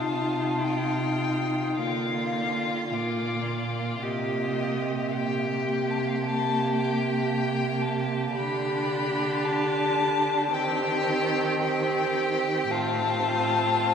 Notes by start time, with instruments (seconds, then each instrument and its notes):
Already playing: cello C3, viola D#4, violin F4 A5
0.65 violin G5
1.78 cello D3, viola A#3, violin F4 F5
2.90 cello A#2, viola A#3, violin F4 D5
4.03 cello C3, viola A#3, violin G4 D#5
5.15 viola A#3, violin G4 G5
5.91 violin A5
5.99 violin G5
6.07 violin F5
6.14 violin G5
6.24 violin A5
6.77 violin G5
7.82 violin A5
8.35 cello D3, viola D4, violin G4 B5
9.44 violin A5
10.52 cello D#3, viola C4, violin G4 G5
11.61 viola C4, violin G4 G5
12.71 cello A2, viola C4, violin F4 A5